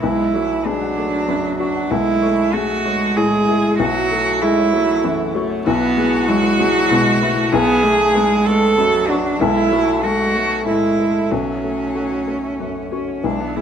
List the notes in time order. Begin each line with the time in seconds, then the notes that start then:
Already playing: D5
0.02 B1 G#3 E4 B4
0.18 B5
0.34 F#3 A3 D5
0.65 F#3 G#3 D4 B4
0.81 F#5
0.97 A3 D5
1.28 F#2 B4
1.59 D4 F#4 F#5
1.75 F#5
1.90 B1 G#3 A3 E4
2.07 G#5
2.22 A3 C#5
2.53 G#3 A3 F#4 G#4
2.69 E5
2.85 G#3 A3 C#5
3.00 G#5
3.16 A2 E4 G#4
3.48 G#4 E5
3.63 E5
3.78 B1 F#3 F#4
3.94 E5
4.10 A3 A4
4.41 G#3 E4 F#4 G#4
4.57 C#5
4.73 F#3 A3 A4
4.88 E5
5.03 F#2 E3 F#4
5.34 A3 F#4 C#5
5.50 C#5
5.66 B1 B3 E4 F#4
5.81 D5
5.96 G#3 G#4
6.28 F#3 G#3 E4
6.43 B4
6.59 F#3 G#3 G#4
6.75 D5
6.89 B2 G#3 E4
7.21 A3 E4 B4
7.36 B4
7.52 B1 B3 G#4 B4
7.68 B5
7.83 A3 D5
8.14 G#3 B4
8.30 F#5
8.45 A3 A4 D5
8.62 A5
8.77 F#2 F#3 B4
9.08 D4 F#4 F#5
9.24 F#5
9.40 B1 G#3 E4 A4
9.56 G#5
9.71 F#3 A3 C#5
10.03 G#3 A3 F#4 A4
10.19 E5
10.34 A3 C#5
10.51 G#5
10.66 A2 G#3 E4 A4
10.98 A4 E5
11.15 E5
11.31 B1 F#3 C#4 F#4
11.47 E5
11.63 A3 A4
11.95 A3 F#4
12.11 C#5
12.27 A3 A4
12.43 E5
12.59 F#2 F#4
12.91 C#4 F#4 C#5
13.08 C#5
13.24 B1 G#3 D4 E4
13.40 B3 D5
13.56 G#3 E4 G#4